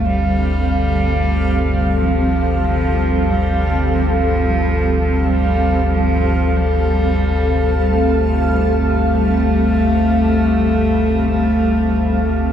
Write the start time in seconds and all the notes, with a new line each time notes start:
Already playing: G1 D2 G3 C4 A4 C5 F5
0.05 G3
1.99 F3
2.63 F3
3.30 G3
3.94 F3
5.26 G3
5.91 F3
6.56 G3
7.88 A3